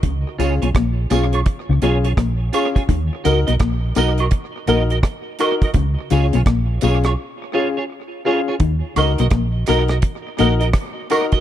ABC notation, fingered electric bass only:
X:1
M:4/4
L:1/16
Q:"Swing 16ths" 1/4=84
K:Ebm
V:1 name="Fingered electric bass" clef=bass
D,, z D,, C,, B,,,2 C,,2 z D,, C,,2 B,,,2 z2 | E,, z D,, C,, B,,,2 C,,2 z2 B,,,2 z4 | D,, z D,, C,, B,,,2 C,,2 z8 | E,, z D,, C,, B,,,2 C,,2 z2 B,,,2 z4 |]